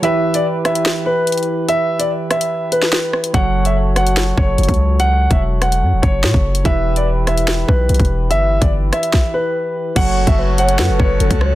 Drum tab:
CC |--------------------------------|--------------------------------|--------------------------------|--------------------------------|
HH |x-----x-----x-x---------xxxx----|x-----x-----x-x-----x---------x-|x-----x-----x-x---------xxxx----|x-----x-----x-x-----x---------x-|
SD |------------r---o---------------|------------r---------o-o---r---|------------r---o---------------|------------r-----------o-------|
BD |--------------------------------|--------------------------------|o-------------------o-----o-----|------o-------------o-----o-----|

CC |--------------------------------|--------------------------------|x-------------------------------|
HH |x-----x-----x-x---------xxxx----|x-----x-----x-x-----------------|x-----x-----x-x---------x-x-----|
SD |------------r---o---------------|------------r---o---------------|----------------o-----------r---|
BD |o-------------------o-----o-----|------o---------o---------------|o-----o-------------o-----o-----|